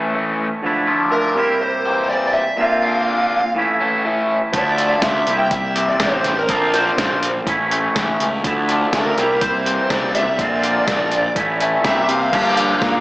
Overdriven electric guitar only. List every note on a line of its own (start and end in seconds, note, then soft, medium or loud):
0.00 0.13 E3 medium
0.00 0.13 A3 medium
0.00 0.14 C#4 medium
0.14 0.46 E3 medium
0.14 0.46 A3 medium
0.14 0.47 C#4 medium
0.87 1.10 F3 medium
0.87 1.11 A3 medium
0.87 1.11 D4 medium
0.87 1.11 F4 medium
1.11 1.36 F3 medium
1.11 1.36 A3 medium
1.11 1.37 D4 medium
1.11 1.37 F4 medium
1.86 2.08 E3 medium
1.86 2.08 A#3 medium
1.86 2.09 C4 medium
1.86 2.10 G4 loud
2.09 2.41 E3 medium
2.09 2.41 A#3 medium
2.09 2.42 C4 medium
2.09 2.42 G4 medium
2.83 3.06 A#3 medium
2.83 3.07 D4 medium
2.83 3.07 F4 medium
3.07 3.39 A#3 medium
3.07 3.39 D4 medium
3.07 3.39 F4 medium
3.81 4.04 E3 medium
3.81 4.04 A3 medium
3.81 4.05 C#4 medium
4.05 4.37 E3 medium
4.05 4.37 A3 medium
4.05 4.37 C#4 medium
4.78 5.01 F3 medium
4.78 5.01 A3 medium
4.78 5.02 D4 medium
4.78 5.02 F4 medium
5.02 5.27 F3 medium
5.02 5.27 A3 medium
5.02 5.27 D4 medium
5.02 5.27 F4 medium
5.76 6.00 E3 medium
5.76 6.00 A#3 medium
5.76 6.00 C4 medium
5.76 6.00 G4 medium
6.01 6.32 E3 medium
6.01 6.32 A#3 medium
6.01 6.33 C4 medium
6.01 6.33 G4 medium
6.74 6.96 F3 medium
6.74 6.97 A#3 medium
6.74 6.98 D4 medium
6.74 6.98 F4 medium
6.98 7.29 F3 medium
6.98 7.30 A#3 medium
6.98 7.30 D4 medium
6.98 7.30 F4 medium
7.71 7.94 E3 medium
7.71 7.95 A3 medium
7.71 7.95 C#4 loud
7.95 8.27 E3 medium
7.95 8.27 A3 medium
7.95 8.28 C#4 medium
8.68 8.92 F3 medium
8.68 8.92 A3 medium
8.68 8.93 D4 medium
8.68 8.93 F4 medium
8.93 9.17 F3 medium
8.93 9.17 A3 medium
8.93 9.18 D4 medium
8.93 9.18 F4 medium
9.66 9.89 E3 medium
9.66 9.90 A#3 medium
9.66 9.91 C4 medium
9.66 9.90 G4 medium
9.91 10.22 E3 medium
9.91 10.22 A#3 medium
9.91 10.22 C4 medium
9.91 10.23 G4 medium
10.63 10.87 F3 medium
10.63 10.88 A#3 medium
10.63 10.88 D4 medium
10.63 10.87 F4 medium
10.88 11.19 F3 medium
10.88 11.20 A#3 medium
10.88 11.20 D4 medium
10.88 11.20 F4 medium
11.61 11.84 E3 medium
11.61 11.85 A3 medium
11.61 11.85 C#4 medium
11.85 12.16 E3 medium
11.85 12.16 A#3 medium
11.85 12.17 C4 medium
11.85 12.17 G4 medium
12.33 13.00 A#3 medium
12.33 13.00 D4 loud
12.33 13.00 G4 medium